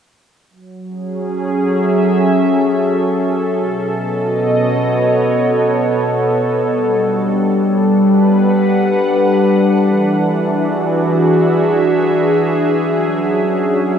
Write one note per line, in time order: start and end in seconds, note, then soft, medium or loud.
0.50 3.57 F#3 medium
0.87 4.80 C#4 medium
0.87 3.57 G#4 medium
1.31 9.66 A4 medium
1.45 3.59 E5 medium
3.59 6.61 B2 medium
3.95 7.83 B3 medium
3.95 6.61 D#5 medium
4.01 7.83 C#5 medium
6.61 9.66 G3 medium
6.69 12.73 D4 medium
7.73 10.87 B4 medium
7.96 10.87 F#5 medium
9.65 12.72 E3 medium
10.17 13.95 F#4 medium
10.31 13.99 G#4 medium
10.67 13.99 E5 medium
12.77 13.99 F#3 medium
13.19 13.99 C#4 medium
13.72 13.99 A4 medium